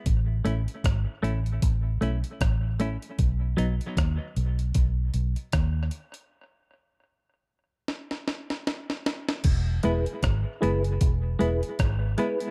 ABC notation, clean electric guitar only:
X:1
M:4/4
L:1/16
Q:"Swing 16ths" 1/4=77
K:E
V:1 name="Clean electric guitar"
z2 [A,CE] z3 [A,CE] z3 [A,CE] z3 [A,CE] z | z2 [F,B,D] z12 z | z16 | z2 [G,B,E] z3 [G,B,E] z3 [G,B,E] z3 [G,B,E] [G,B,E] |]